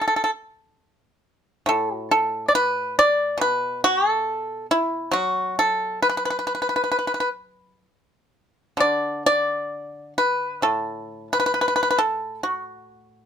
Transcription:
0.01 A4
0.08 A4
0.16 A4
0.24 A4
1.66 A2 A4
1.96 F#4
2.11 A4
2.48 D5
2.55 B4
2.99 D5
3.38 B2 B4
3.84 F#4
4.10 A4
4.71 E4
5.11 F#3 F#4
5.59 A4
6.02 B4
6.09 B4
6.17 B4
6.25 B4
6.30 B4
6.39 B4
6.47 B4
6.55 B4
6.62 B4
6.69 B4
6.76 B4
6.84 B4
6.92 B4
6.99 B4
7.07 B4
7.14 B4
7.20 B4
8.77 D3 D5
9.26 D5
10.18 B4
10.62 A2 A4
11.33 B4
11.40 B4
11.46 B4
11.54 B4
11.61 B4
11.76 B4
11.83 B4
11.91 B4
11.98 A4
12.43 F#4

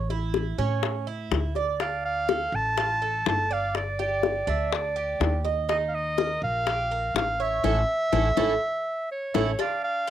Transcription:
Already playing: A1
0.10 E4, high bongo
0.34 high bongo
0.58 A2 C#4, high bongo
0.83 high bongo
1.07 E4
1.31 D2, high bongo, low bongo
1.55 D5, high bongo
1.80 D4 F5, high bongo
2.05 F5
2.29 A4, high bongo
2.52 A1 A5
2.77 F4, high bongo
3.02 A4
3.26 G1 A5, high bongo, low bongo
3.51 D5 F5
3.75 D5, high bongo
3.99 G4 D5, high bongo
4.23 high bongo
4.47 D2 D4 E5, high bongo
4.73 D5, high bongo
4.96 G4
5.20 D#2, high bongo, low bongo
5.45 D#5, high bongo
5.69 D#4 D#5, high bongo
5.88 F5
5.95 D#5
6.18 A#4, high bongo
6.42 A#1 F5
6.67 G4, high bongo
6.91 A#4
7.15 A1 F5, high bongo, low bongo
7.40 C#5 E5
7.64 A1 C#4 E4 A4, low bongo
8.12 A1 C#4 E4 A4, low bongo
8.37 A1 C#4 E4 A4, low bongo
9.11 C#5
9.34 A1 C#4 E4 A4 C#5, low bongo
9.59 D4 F5, cowbell
9.84 F5

